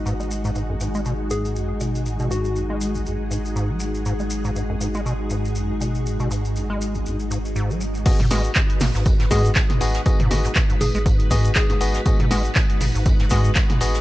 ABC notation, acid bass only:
X:1
M:4/4
L:1/16
Q:"Swing 16ths" 1/4=120
K:G#m
V:1 name="Acid bass" clef=bass
G,, G, z G,, G,, F,, G,, G, B,, z G,,2 F,, G,, B,,2 | G,, B,, G,,2 F,, G,2 G,,, G,, z G,, z G,, F, G, z | G,, G, z G,, G,, F,, G,, G, B,, z G,,2 F,, G,, B,,2 | G,, B,, G,,2 F,, G,2 G,,, G,, z G,, z G,, F, G, z |
G,, G,, G, z B,, z C, G,, F,, G,, G, z B,, z G,,, z | G,, G,, D, G,, B,, G,, G,, G, G,,2 D, z2 G,, z2 | G,, G,, G, z B,, z C, G,, F,, G,, G, z B,, z G,,, z |]